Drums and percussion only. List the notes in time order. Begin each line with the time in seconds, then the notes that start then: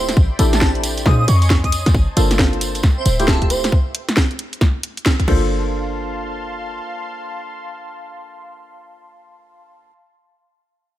0.09 snare, closed hi-hat, tambourine
0.17 kick, tambourine
0.39 closed hi-hat, tambourine
0.53 snare, closed hi-hat, tambourine
0.61 kick, snare, tambourine
0.75 closed hi-hat
0.83 closed hi-hat, tambourine
0.97 closed hi-hat, tambourine
1.06 kick, snare, tambourine
1.28 closed hi-hat, tambourine
1.42 closed hi-hat, tambourine
1.50 kick, snare, tambourine
1.64 kick, closed hi-hat
1.72 closed hi-hat, tambourine
1.86 snare, closed hi-hat, tambourine
1.94 kick, tambourine
2.17 closed hi-hat, tambourine
2.31 snare, closed hi-hat, tambourine
2.39 kick, snare
2.53 closed hi-hat
2.61 closed hi-hat, tambourine
2.75 closed hi-hat, tambourine
2.83 kick, snare, tambourine
3.05 closed hi-hat, tambourine
3.19 closed hi-hat, tambourine
3.27 kick, snare, tambourine
3.42 kick, closed hi-hat
3.50 closed hi-hat, tambourine
3.64 snare, closed hi-hat, tambourine
3.72 kick
3.95 closed hi-hat
4.09 snare, closed hi-hat
4.17 kick, snare
4.31 closed hi-hat
4.39 closed hi-hat
4.53 closed hi-hat
4.61 kick, snare
4.83 closed hi-hat
4.97 closed hi-hat
5.06 kick, snare, closed hi-hat
5.20 kick, closed hi-hat
5.28 kick, crash